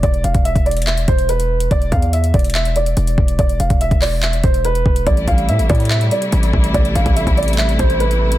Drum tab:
HH |x-x-x-x-x-x-xxxxx-x-x-x-x-x---x-|x-x-x-x-x-x-xxxx--x-x-x-x-x---x-|x-x-x-x-x-x-o---x-x-x-x-x-x---x-|x-x-x-x-x-x-xxxxx-x-x-x-x-x---x-|
CP |----------------x---------------|----------------x---------------|------------x---x---------------|----------------x---------------|
BD |o-----o---o---------o-----------|o---o-------o---------------o---|o-----o---o---------o-------o---|o---o-------o---------------o---|

HH |x-x-x-x-x-x-xxxxx-x-x-x-x-x---x-|
CP |----------------x---------------|
BD |o-----o---o---------o-----------|